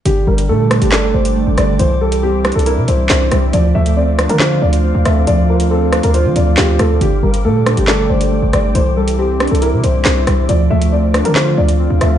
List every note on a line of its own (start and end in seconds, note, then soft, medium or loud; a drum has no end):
0.05 0.26 G1 loud
0.05 1.14 D3 medium
0.05 0.26 G4 medium
0.05 1.78 A4 medium
0.05 1.78 G5 medium
0.05 3.50 D6 medium
0.05 closed hi-hat medium
0.27 0.50 G1 loud
0.27 1.36 G3 medium
0.27 0.48 A#4 medium
0.38 closed hi-hat medium
0.49 0.80 A#2 loud
0.49 1.35 A3 medium
0.49 0.80 A4 medium
0.71 1.79 D4 medium
0.71 cross-stick loud
0.71 closed hi-hat medium
0.81 1.13 G1 loud
0.81 0.92 G4 medium
0.81 closed hi-hat medium
0.92 1.13 A4 medium
0.92 1.79 D5 medium
0.92 snare loud
0.92 clap loud
1.14 1.45 G1 loud
1.14 1.55 C5 medium
1.25 closed hi-hat medium
1.36 1.79 A3 medium
1.47 1.57 G1 loud
1.58 1.79 G1 loud
1.58 1.79 G3 medium
1.58 1.78 D5 medium
1.58 cross-stick medium
1.58 closed hi-hat medium
1.79 2.52 C2 loud
1.79 2.88 E3 loud
1.79 6.97 C5 medium
1.79 2.00 C5 medium
1.79 3.52 E5 medium
1.79 closed hi-hat medium
2.01 3.10 G3 medium
2.01 2.22 A4 medium
2.12 closed hi-hat medium
2.23 3.09 C4 medium
2.23 2.54 G4 medium
2.45 3.53 D4 medium
2.45 cross-stick loud
2.45 closed hi-hat soft
2.52 2.79 C2 loud
2.52 2.66 A4 medium
2.52 closed hi-hat medium
2.59 closed hi-hat medium
2.66 3.53 E4 loud
2.66 2.87 A#4 medium
2.66 closed hi-hat medium
2.77 2.88 C3 loud
2.88 3.09 C2 loud
2.88 3.08 C5 medium
2.88 closed hi-hat medium
3.10 3.31 C2 loud
3.10 3.53 C4 medium
3.10 3.51 C5 medium
3.10 snare loud
3.10 clap loud
3.10 closed hi-hat medium
3.31 3.52 C2 loud
3.31 3.53 G3 medium
3.31 cross-stick medium
3.31 closed hi-hat medium
3.53 3.74 D2 loud
3.53 4.62 F3 loud
3.53 3.74 D5 medium
3.53 6.98 F5 medium
3.53 12.18 D6 medium
3.53 closed hi-hat medium
3.75 4.27 D2 loud
3.75 4.84 A3 medium
3.75 3.95 E5 medium
3.86 closed hi-hat medium
3.97 4.83 C4 medium
3.97 4.27 D5 medium
4.19 5.27 D4 medium
4.19 cross-stick loud
4.19 closed hi-hat medium
4.29 4.61 D3 loud
4.29 4.40 A#4 medium
4.29 closed hi-hat medium
4.40 5.49 F4 loud
4.40 4.61 C5 medium
4.40 snare loud
4.40 clap loud
4.62 4.93 D2 loud
4.62 5.03 D5 medium
4.73 closed hi-hat medium
4.84 5.70 C4 medium
4.95 5.05 D2 loud
5.05 5.26 D2 loud
5.05 5.48 A3 medium
5.05 5.26 E5 medium
5.05 cross-stick medium
5.05 closed hi-hat medium
5.27 6.00 D2 loud
5.27 6.36 F3 loud
5.27 5.48 D5 loud
5.27 closed hi-hat medium
5.49 6.58 A3 medium
5.49 5.70 A#4 medium
5.60 closed hi-hat medium
5.71 6.57 C4 medium
5.71 6.01 A4 medium
5.92 7.01 D4 medium
5.92 cross-stick loud
5.92 closed hi-hat medium
6.03 6.27 D2 loud
6.03 6.14 A#4 medium
6.03 closed hi-hat medium
6.14 7.01 F4 loud
6.14 6.35 C5 medium
6.14 closed hi-hat medium
6.25 6.35 F3 loud
6.36 6.57 D2 loud
6.36 6.56 D5 medium
6.36 closed hi-hat medium
6.57 6.79 D2 loud
6.57 7.01 C4 medium
6.57 6.78 G4 medium
6.57 snare loud
6.57 clap loud
6.57 closed hi-hat medium
6.79 7.00 D2 loud
6.79 7.01 A3 medium
6.79 7.00 A4 medium
6.79 cross-stick medium
6.79 closed hi-hat medium
7.01 7.22 G1 loud
7.01 8.10 D3 medium
7.01 7.22 G4 medium
7.01 8.73 A4 medium
7.01 8.73 G5 medium
7.01 closed hi-hat medium
7.23 7.46 G1 loud
7.23 8.32 G3 medium
7.23 7.43 A#4 medium
7.34 closed hi-hat medium
7.45 7.76 A#2 loud
7.45 8.30 A3 medium
7.45 7.75 A4 medium
7.66 8.75 D4 medium
7.66 cross-stick loud
7.66 closed hi-hat medium
7.77 8.09 G1 loud
7.77 7.87 G4 medium
7.77 closed hi-hat medium
7.88 8.08 A4 medium
7.88 8.75 D5 loud
7.88 snare loud
7.88 clap loud
8.10 8.41 G1 loud
8.10 8.51 C5 medium
8.21 closed hi-hat medium
8.32 8.75 A3 medium
8.42 8.53 G1 loud
8.53 8.74 G1 loud
8.53 8.75 G3 medium
8.53 8.74 D5 medium
8.53 cross-stick medium
8.53 closed hi-hat medium
8.75 9.48 C2 loud
8.75 9.84 E3 loud
8.75 12.18 C5 medium
8.75 8.96 C5 medium
8.75 10.47 E5 medium
8.75 closed hi-hat medium
8.97 10.05 G3 medium
8.97 9.17 A4 medium
9.08 closed hi-hat medium
9.19 10.04 C4 medium
9.19 9.49 G4 medium
9.40 10.49 D4 medium
9.40 cross-stick loud
9.40 closed hi-hat soft
9.48 9.74 C2 loud
9.48 9.61 A4 medium
9.48 closed hi-hat medium
9.55 closed hi-hat medium
9.62 10.49 E4 loud
9.62 9.82 A#4 medium
9.62 closed hi-hat medium
9.73 9.83 C3 loud
9.84 10.05 C2 loud
9.84 10.04 C5 medium
9.84 closed hi-hat medium
10.05 10.26 C2 loud
10.05 10.49 C4 medium
10.05 10.46 C5 medium
10.05 snare loud
10.05 clap loud
10.05 closed hi-hat medium
10.27 10.48 C2 loud
10.27 10.49 G3 medium
10.27 cross-stick medium
10.27 closed hi-hat medium
10.49 10.70 D2 loud
10.49 11.58 F3 loud
10.49 10.69 D5 medium
10.49 12.18 F5 medium
10.49 closed hi-hat medium
10.70 11.23 D2 loud
10.70 11.79 A3 medium
10.70 10.91 E5 medium
10.82 closed hi-hat medium
10.92 11.78 C4 medium
10.92 11.23 D5 medium
11.14 12.18 D4 medium
11.14 cross-stick loud
11.14 closed hi-hat medium
11.25 11.56 D3 loud
11.25 11.35 A#4 medium
11.25 closed hi-hat medium
11.36 12.18 F4 loud
11.36 11.56 C5 medium
11.36 snare loud
11.36 clap loud
11.58 11.89 D2 loud
11.58 11.98 D5 medium
11.69 closed hi-hat medium
11.79 12.18 C4 medium
11.90 12.01 D2 loud
12.01 12.18 D2 loud
12.01 12.18 A3 medium
12.01 12.18 E5 medium
12.01 cross-stick medium
12.01 closed hi-hat medium